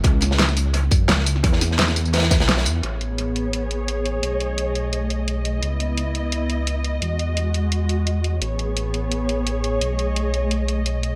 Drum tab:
HH |x---x---x---x---x---x---x---x---|x---x---x---x---xxx-x-x-x-x-x---|x---x---x---x---x---x---x---x---|x---x---x---x---x---x---x---x---|
TB |----x-----x-x-------x-------x---|----x-----x-x-x-----x-------x---|--------------------------------|--------------------------------|
SD |----o-o-o-o-------------o-o---o-|--o-o-o-o-o-----ooo-o-o-o-o-----|--------------------------------|--------------------------------|
BD |o-------------------o-----------|o-------------------o-----------|--------------------------------|--------------------------------|

HH |x---x---x---x---x---x---x---x---|x---x---x---x---x---x---x---x---|x---x---x---x---x---x---x---x---|x---x---x---x---x---x---x---x---|
TB |--------------------------------|--------------------------------|--------------------------------|--------------------------------|
SD |--------------------------------|--------------------------------|--------------------------------|--------------------------------|
BD |--------------------------------|--------------------------------|--------------------------------|--------------------------------|